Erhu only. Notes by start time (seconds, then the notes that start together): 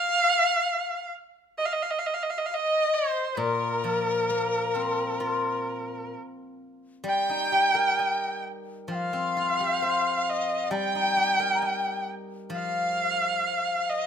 Already playing: F5
1.58 D#5
1.65 F5
1.73 D#5
1.82 F5
1.91 D#5
1.99 F5
2.06 D#5
2.14 F5
2.23 D#5
2.30 F5
2.38 D#5
2.46 F5
2.54 D#5
2.94 C5
3.39 A#4
7.09 G5
8.94 F5
10.29 D#5
10.71 G5
12.57 F5
13.89 D#5